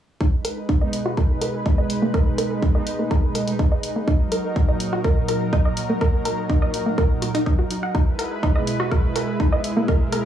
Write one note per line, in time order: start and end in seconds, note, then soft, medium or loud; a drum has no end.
0.21 4.04 G#3 medium
0.21 0.24 D#4 loud
0.21 7.91 D#4 medium
0.21 4.04 B4 medium
0.21 kick loud
0.45 0.53 A#4 medium
0.45 closed hi-hat loud
0.69 0.77 D#4 loud
0.69 kick loud
0.82 2.72 B2 medium
0.82 2.72 G#3 medium
0.82 2.72 D#4 medium
0.82 0.85 D#5 medium
0.93 closed hi-hat loud
1.06 1.11 F#4 medium
1.17 1.21 A#4 loud
1.17 kick loud
1.41 1.50 A#4 medium
1.41 closed hi-hat loud
1.66 1.74 D#4 loud
1.66 kick loud
1.78 1.81 D#5 medium
1.90 closed hi-hat loud
2.02 2.06 A#3 medium
2.14 2.17 A#4 loud
2.14 kick loud
2.38 2.47 A#4 medium
2.38 closed hi-hat loud
2.62 2.71 D#4 loud
2.62 kick loud
2.75 3.45 B2 medium
2.75 3.45 G#3 medium
2.75 3.45 D#4 medium
2.75 2.80 D#5 medium
2.87 closed hi-hat loud
2.99 3.02 A#3 medium
3.11 3.14 A#4 loud
3.11 kick loud
3.35 3.43 A#4 medium
3.35 closed hi-hat loud
3.48 3.54 B2 medium
3.48 3.54 G#3 medium
3.48 3.54 D#4 medium
3.48 closed hi-hat medium
3.59 3.67 D#4 loud
3.59 kick loud
3.72 3.77 D#5 medium
3.83 closed hi-hat loud
3.96 3.99 A#3 medium
4.08 7.91 F#3 medium
4.08 4.11 D#4 medium
4.08 7.91 A#4 medium
4.08 kick loud
4.32 4.40 A#4 medium
4.32 closed hi-hat loud
4.56 4.64 D#4 loud
4.56 kick loud
4.69 6.59 A#2 medium
4.69 6.59 F#3 medium
4.69 6.59 D#4 medium
4.69 4.72 D#5 medium
4.80 closed hi-hat loud
4.93 4.98 F#4 loud
5.04 5.08 A#4 loud
5.04 kick loud
5.28 5.37 A#4 medium
5.28 closed hi-hat loud
5.53 5.61 D#4 loud
5.53 kick loud
5.65 5.68 D#5 medium
5.77 closed hi-hat loud
5.90 5.93 A#3 medium
6.01 6.04 A#4 loud
6.01 kick loud
6.25 6.34 A#4 medium
6.25 closed hi-hat loud
6.50 6.58 D#4 loud
6.50 kick loud
6.62 7.32 A#2 medium
6.62 7.32 F#3 medium
6.62 7.32 D#4 medium
6.62 6.67 D#5 medium
6.74 closed hi-hat loud
6.86 6.89 A#3 medium
6.98 7.01 A#4 loud
6.98 kick loud
7.22 7.30 F#4 medium
7.22 closed hi-hat loud
7.35 7.41 A#2 medium
7.35 7.41 F#3 medium
7.35 7.40 D#4 loud
7.35 7.41 D#4 medium
7.35 closed hi-hat medium
7.46 7.52 D#4 loud
7.46 kick loud
7.59 7.64 F#4 medium
7.71 closed hi-hat loud
7.83 7.91 F#5 medium
7.95 10.25 G#3 medium
7.95 7.98 D#4 loud
7.95 10.25 E4 medium
7.95 9.86 B4 medium
7.95 kick loud
8.19 8.27 A#4 medium
8.19 closed hi-hat loud
8.43 8.51 D#4 loud
8.43 kick loud
8.56 10.25 B2 medium
8.56 10.25 G#3 medium
8.56 10.25 E4 medium
8.56 8.59 D#5 medium
8.67 closed hi-hat loud
8.80 8.85 F#4 loud
8.91 8.95 A#4 loud
8.91 kick loud
9.16 9.24 A#4 medium
9.16 closed hi-hat loud
9.40 9.48 D#4 loud
9.40 kick loud
9.52 9.56 D#5 medium
9.64 closed hi-hat loud
9.77 9.80 A#3 medium
9.88 9.92 A#4 loud
9.88 10.25 A#4 medium
9.88 kick loud
10.12 10.21 A#4 medium
10.12 closed hi-hat loud